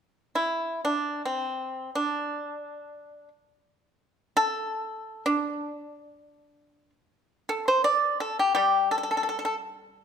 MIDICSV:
0, 0, Header, 1, 2, 480
1, 0, Start_track
1, 0, Tempo, 500000
1, 9644, End_track
2, 0, Start_track
2, 0, Title_t, "Pipa"
2, 0, Program_c, 0, 105
2, 340, Note_on_c, 0, 64, 48
2, 766, Note_off_c, 0, 64, 0
2, 812, Note_on_c, 0, 62, 49
2, 1162, Note_off_c, 0, 62, 0
2, 1204, Note_on_c, 0, 60, 45
2, 1817, Note_off_c, 0, 60, 0
2, 1876, Note_on_c, 0, 62, 48
2, 3148, Note_off_c, 0, 62, 0
2, 4191, Note_on_c, 0, 69, 70
2, 5018, Note_off_c, 0, 69, 0
2, 5048, Note_on_c, 0, 62, 70
2, 6620, Note_off_c, 0, 62, 0
2, 7190, Note_on_c, 0, 69, 52
2, 7353, Note_off_c, 0, 69, 0
2, 7372, Note_on_c, 0, 72, 58
2, 7525, Note_off_c, 0, 72, 0
2, 7529, Note_on_c, 0, 74, 70
2, 7856, Note_off_c, 0, 74, 0
2, 7875, Note_on_c, 0, 69, 59
2, 8040, Note_off_c, 0, 69, 0
2, 8058, Note_on_c, 0, 67, 50
2, 8193, Note_off_c, 0, 67, 0
2, 8204, Note_on_c, 0, 67, 57
2, 8216, Note_on_c, 0, 55, 46
2, 8535, Note_off_c, 0, 67, 0
2, 8556, Note_on_c, 0, 69, 52
2, 8607, Note_off_c, 0, 69, 0
2, 8618, Note_on_c, 0, 69, 38
2, 8660, Note_off_c, 0, 69, 0
2, 8672, Note_on_c, 0, 69, 41
2, 8733, Note_off_c, 0, 69, 0
2, 8744, Note_on_c, 0, 69, 36
2, 8793, Note_off_c, 0, 69, 0
2, 8804, Note_on_c, 0, 69, 39
2, 8850, Note_off_c, 0, 69, 0
2, 8862, Note_on_c, 0, 69, 38
2, 8905, Note_off_c, 0, 69, 0
2, 8917, Note_on_c, 0, 69, 46
2, 9001, Note_off_c, 0, 69, 0
2, 9012, Note_on_c, 0, 69, 42
2, 9059, Note_off_c, 0, 69, 0
2, 9071, Note_on_c, 0, 69, 48
2, 9162, Note_off_c, 0, 69, 0
2, 9644, Note_off_c, 0, 55, 0
2, 9644, End_track
0, 0, End_of_file